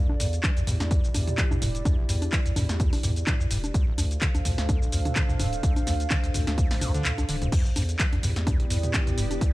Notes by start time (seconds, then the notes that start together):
Already playing: E4 G4 D5
0.09 E1, high conga
0.20 E2 G2, open hi-hat, shaker
0.33 closed hi-hat, shaker
0.43 E3, kick, clap, closed hi-hat, high conga, shaker
0.57 E2, closed hi-hat, shaker
0.67 E2 G2, mid tom, open hi-hat, shaker
0.80 E2, snare, closed hi-hat, high conga, shaker
0.91 E2, kick, closed hi-hat, shaker
1.04 E1, shaker
1.14 E2 G2, open hi-hat, high conga, shaker
1.28 closed hi-hat, mid tom, shaker
1.38 E3, kick, clap, closed hi-hat, shaker
1.51 E2, mid tom, high conga, shaker
1.62 E1 G2, mid tom, open hi-hat, shaker
1.75 closed hi-hat, shaker
1.85 E2, kick, closed hi-hat, high conga, shaker
1.98 E1
2.09 E2 G2, open hi-hat, shaker
2.22 closed hi-hat, high conga, shaker
2.32 E3, kick, clap, closed hi-hat, shaker
2.46 E2, closed hi-hat, shaker
2.56 E2 G2, mid tom, open hi-hat, high conga, shaker
2.69 E2, snare, closed hi-hat, shaker
2.80 E2, kick, closed hi-hat, shaker
2.93 E1, open hi-hat, high conga, shaker
3.03 E2 G2, mid tom, open hi-hat, shaker
3.16 closed hi-hat, shaker
3.27 E3, kick, clap, closed hi-hat, mid tom, high conga, shaker
3.40 E2, shaker
3.51 E1 G2, open hi-hat, shaker
3.64 closed hi-hat, high conga, shaker
3.74 D2 D4 A4 C5 F5, kick, closed hi-hat, shaker
3.87 D1
3.98 D2 F2, open hi-hat, high conga, shaker
4.11 closed hi-hat, shaker
4.21 D3, kick, clap, closed hi-hat, shaker
4.35 D2, closed hi-hat, high conga, shaker
4.45 D2 F2, mid tom, open hi-hat, shaker
4.58 D2, snare, closed hi-hat, shaker
4.69 D2, kick, closed hi-hat, high conga, shaker
4.82 D1, shaker
4.92 D2 F2, open hi-hat, shaker
5.05 closed hi-hat, mid tom, high conga, shaker
5.16 D3, kick, clap, closed hi-hat, shaker
5.29 D2, mid tom, shaker
5.40 D1 F2, mid tom, open hi-hat, high conga, shaker
5.53 closed hi-hat, shaker
5.63 D2, kick, closed hi-hat, shaker
5.76 D1, closed hi-hat, high conga, shaker
5.87 D2 F2, snare, open hi-hat, shaker
6.00 closed hi-hat, shaker
6.10 D3, kick, snare, clap, closed hi-hat, high conga, shaker
6.23 D2, closed hi-hat, shaker
6.34 D2 F2, mid tom, open hi-hat, shaker
6.47 D2, snare, closed hi-hat, high conga, shaker
6.58 D2, kick, closed hi-hat, shaker
6.71 D1, snare, open hi-hat, shaker
6.81 D2 G2, mid tom, open hi-hat, high conga, shaker
6.94 D3, closed hi-hat, shaker
7.05 D2, clap, closed hi-hat, mid tom, shaker
7.18 C2, closed hi-hat, high conga, shaker
7.29 D1 D3, open hi-hat, shaker
7.42 D2, closed hi-hat, mid tom, shaker
7.52 E2 B3 E4 G4 D5, kick, closed hi-hat, crash, shaker
7.65 E1, shaker
7.76 E2 G2, open hi-hat, high conga, shaker
7.86 G4, closed hi-hat, shaker
7.99 E3, kick, clap, closed hi-hat, shaker
8.13 E2, closed hi-hat, high conga
8.23 E2 G2, mid tom, open hi-hat, shaker
8.35 E2 D5, snare, closed hi-hat, shaker
8.47 E2, kick, closed hi-hat, high conga, shaker
8.60 E1, closed hi-hat
8.70 E2 G2, open hi-hat, shaker
8.83 closed hi-hat, mid tom, shaker
8.94 E3, kick, clap, closed hi-hat, high conga, shaker
9.07 E2, closed hi-hat, mid tom, shaker
9.11 E5
9.18 E1 G2, open hi-hat, shaker
9.31 closed hi-hat, high conga, shaker
9.41 E2, kick, closed hi-hat, shaker